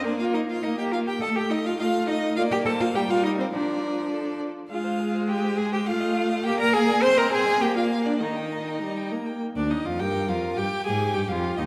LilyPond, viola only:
\new Staff \with { instrumentName = "Viola" } { \time 2/4 \key bes \major \tempo 4 = 103 bes4 bes4 | a4 a4 | bes4 g4 | f4. r8 |
\key ees \major aes2 | a4 bes4 | c'4 bes4 | ees4 g8 bes8 |
r16 d'16 ees'16 f'16 g'8 f'8 | g'8 aes'8 g'16 f'8 ees'16 | }